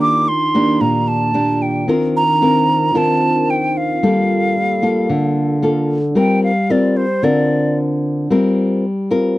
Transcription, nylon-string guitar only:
0.00 0.78 D#3 medium
0.00 0.27 A#3 medium
0.00 0.27 D4 medium
0.00 0.27 G4 medium
0.55 1.30 A#3 medium
0.55 1.30 D4 medium
0.55 1.31 G4 medium
0.80 1.85 A#2 medium
1.34 1.83 A#3 medium
1.34 1.84 D4 soft
1.34 1.84 G4 medium
1.88 2.92 D#3 medium
1.88 2.22 C4 soft
1.88 2.23 F4 medium
1.88 2.23 A#4 medium
2.42 2.91 C4 medium
2.42 2.91 F4 medium
2.42 2.91 A#4 medium
2.94 3.99 D#3 medium
2.94 3.98 C4 medium
2.94 3.98 F4 medium
2.94 3.98 A#4 medium
4.03 5.07 G3 medium
4.03 4.56 A#3 medium
4.03 4.56 F4 medium
4.03 4.56 A4 medium
4.82 5.59 A#3 medium
4.82 5.59 F4 medium
4.82 5.59 A4 medium
5.09 6.14 D3 medium
5.62 5.97 A#3 soft
5.62 5.97 F4 medium
5.62 5.98 A4 medium
6.15 7.20 G3 medium
6.15 6.50 C4 soft
6.15 6.51 F4 medium
6.15 6.51 A#4 medium
6.70 7.04 C4 medium
6.70 7.05 F4 medium
6.70 7.05 A#4 medium
7.23 8.28 D3 medium
7.23 8.26 C4 medium
7.23 8.26 F4 soft
7.23 8.27 A#4 medium
8.30 9.35 G3 medium
8.30 8.84 C4 medium
8.30 8.84 F4 medium
8.30 8.84 A#4 medium
9.11 9.38 C4 medium
9.11 9.38 F4 medium
9.11 9.38 A#4 medium

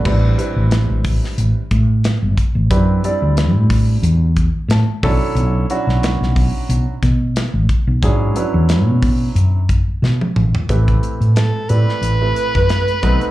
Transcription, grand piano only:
0.06 0.36 G3 medium
0.06 0.36 C4 medium
0.06 0.36 D4 medium
0.06 0.36 E4 medium
0.06 0.36 B4 medium
0.38 1.60 G3 medium
0.38 1.60 C4 medium
0.38 1.60 D4 medium
0.38 1.60 E4 medium
0.38 1.60 B4 medium
2.71 3.01 C4 medium
2.71 3.01 D4 medium
2.71 3.01 E4 medium
2.71 3.01 G4 medium
2.71 3.01 B4 medium
3.04 4.26 G3 medium
3.04 4.26 C4 medium
3.04 4.26 D4 medium
3.04 4.26 E4 medium
3.04 4.26 D5 medium
4.71 5.33 A5 medium
5.03 5.64 F#3 medium
5.03 5.64 C#4 medium
5.03 5.64 D4 medium
5.03 5.64 E4 medium
5.03 5.64 A4 loud
5.70 6.92 F#3 medium
5.70 6.92 C#4 medium
5.70 6.92 D4 medium
5.70 6.92 E4 medium
5.70 6.92 F#4 medium
8.03 8.34 F#3 medium
8.03 8.34 C#4 medium
8.03 8.34 D4 medium
8.03 8.34 E4 medium
8.03 8.34 G#4 medium
8.36 9.59 F#3 medium
8.36 9.59 C#4 medium
8.36 9.59 D4 medium
8.36 9.59 E4 medium
8.36 9.59 B4 medium
10.70 11.62 A3 medium
10.70 11.62 C4 medium
10.70 11.62 E4 medium
10.70 11.62 G4 medium
10.70 11.62 B4 medium
11.69 12.16 A3 medium
11.69 12.16 C4 medium
11.69 12.17 E4 medium
11.69 12.17 G4 medium
11.69 12.17 D5 medium
12.21 13.01 A3 medium
12.21 13.01 C4 soft
12.21 13.03 E4 medium
12.21 13.03 G4 medium
12.21 13.01 B4 medium
13.03 13.31 A3 medium
13.03 13.31 C4 medium
13.03 13.31 D#4 medium
13.03 13.31 F#4 medium
13.03 13.31 B4 loud

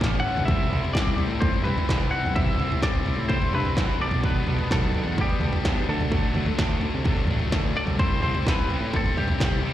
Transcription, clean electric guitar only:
0.00 0.19 D5 loud
0.20 0.45 F#5 medium
0.45 0.90 E5 medium
0.93 1.42 D5 medium
1.41 1.63 C5 loud
1.64 2.13 B4 medium
2.11 2.35 F#5 medium
2.35 2.83 E5 medium
2.83 3.28 D5 medium
3.29 3.53 C5 medium
3.55 4.01 B4 medium
4.02 4.25 D5 medium
4.25 4.68 B4 medium
4.72 5.15 A4 medium
5.21 5.89 G4 medium
5.89 7.49 A4 medium
7.77 7.83 D5 medium
8.00 8.21 C5 medium
8.22 8.47 C5 medium
8.49 8.96 B4 medium
8.96 9.17 A4 medium
9.18 9.61 G4 medium

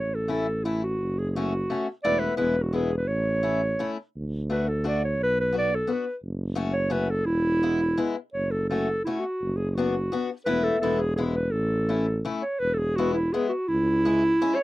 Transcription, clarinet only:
0.00 0.16 C#5 medium
0.15 0.31 A4 medium
0.32 0.66 A4 medium
0.65 0.83 E4 medium
0.83 1.20 F#4 medium
1.19 1.30 G#4 medium
1.30 1.38 G#4 medium
1.36 1.89 F#4 medium
2.04 2.21 D5 loud
2.20 2.37 B4 medium
2.37 2.64 B4 medium
2.62 2.74 F#4 medium
2.74 2.96 G#4 medium
2.97 3.10 B4 medium
3.08 3.97 C#5 medium
4.51 4.70 B4 medium
4.68 4.85 A4 medium
4.87 5.03 D5 medium
5.04 5.19 C#5 medium
5.23 5.38 B4 loud
5.41 5.55 B4 medium
5.58 5.76 D5 medium
5.75 5.94 A4 medium
5.93 6.17 B4 medium
6.73 6.94 C#5 medium
6.92 7.12 B4 medium
7.10 7.27 A4 medium
7.26 8.16 E4 loud
8.33 8.52 C#5 medium
8.51 8.69 A4 medium
8.70 9.04 A4 medium
9.05 9.22 E4 medium
9.20 9.58 F#4 medium
9.57 9.70 G#4 medium
9.70 9.77 G#4 soft
9.75 10.29 F#4 medium
10.46 10.65 B4 loud
10.63 10.80 A4 medium
10.81 11.01 A4 medium
11.00 11.16 G#4 medium
11.16 11.25 G#4 medium
11.36 11.53 B4 medium
11.51 12.24 A4 medium
12.42 12.61 C#5 medium
12.59 12.75 B4 medium
12.74 12.80 A4 medium
12.79 12.98 G#4 medium
12.96 13.13 F#4 medium
13.14 13.35 E4 medium
13.33 13.49 G#4 medium
13.49 13.70 F#4 medium
13.68 14.57 E4 loud
14.56 14.63 C#5 medium

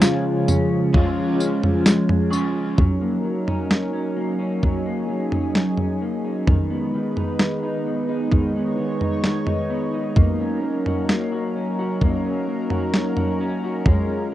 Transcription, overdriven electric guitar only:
0.00 0.93 C#3 medium
0.00 0.92 G#3 medium
0.00 0.94 C#4 medium
0.00 0.95 F4 medium
0.00 0.97 G#4 medium
0.93 2.32 G#3 medium
0.93 2.35 C#4 medium
0.93 2.32 F4 medium
0.98 2.29 G#4 medium
2.31 2.79 F4 medium
2.31 2.78 G#4 medium
2.35 2.80 C#4 soft

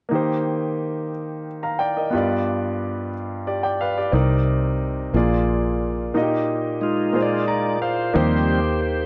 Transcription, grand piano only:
0.09 1.08 D#3 soft
0.09 2.07 A#3 soft
0.09 2.08 D#4 soft
0.13 2.10 G4 soft
0.13 1.45 C5 soft
1.63 1.79 F5 soft
1.63 1.79 A#5 soft
1.79 1.96 D5 soft
1.79 1.95 G5 soft
1.97 2.28 A#4 soft
1.97 2.28 D#5 soft
2.10 3.09 G2 soft
2.10 4.09 B3 soft
2.10 4.10 F4 soft
2.14 3.12 G4 soft
2.14 3.13 D5 soft
3.47 3.63 G4 soft
3.47 3.63 D5 soft
3.63 3.80 D5 soft
3.63 3.79 G5 soft
3.81 3.97 B4 soft
3.81 3.96 F5 soft
3.98 4.29 G4 soft
3.98 4.14 D5 soft
4.12 5.10 C3 soft
4.12 5.13 C4 soft
4.12 5.14 D#4 soft
4.12 5.15 A#4 soft
4.12 5.15 D5 medium
5.14 6.11 A#2 soft
5.14 6.12 A#3 soft
5.14 6.15 F4 soft
5.14 6.16 G#4 soft
5.14 6.16 D5 medium
6.14 7.11 A#2 soft
6.14 7.11 A#3 soft
6.14 7.15 D#4 soft
6.14 6.22 F#4 soft
6.14 7.16 D#5 medium
6.22 7.19 G4 soft
7.13 8.11 A#2 medium
7.13 8.12 A#3 soft
7.13 8.15 F4 soft
7.13 8.16 G#4 soft
7.13 7.22 C5 soft
7.22 8.19 D5 medium
7.48 7.79 A#5 soft
7.82 8.13 F5 soft
8.14 9.06 D#3 soft
8.14 9.06 A#3 medium
8.14 9.06 D#4 medium
8.14 9.06 G4 medium
8.14 9.06 C5 medium

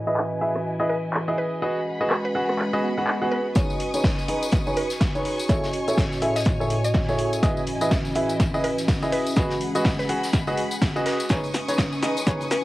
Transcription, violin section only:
0.00 1.60 E4 medium
0.00 1.60 D#5 medium
0.00 1.60 G#5 medium
1.62 3.54 G#4 medium
1.62 3.54 F#5 medium
1.62 3.54 B5 medium
3.56 5.47 B4 medium
3.56 9.32 G#5 medium
3.56 7.39 C#6 medium
3.56 5.47 D#6 medium
5.49 7.41 C#5 medium
7.43 9.35 E4 medium
7.43 9.35 D#5 medium
9.37 11.28 G#4 medium
9.37 11.28 F#5 medium
9.37 11.28 B5 medium
11.30 12.64 B4 medium
11.30 12.64 G#5 medium
11.30 12.64 C#6 medium
11.30 12.64 D#6 medium

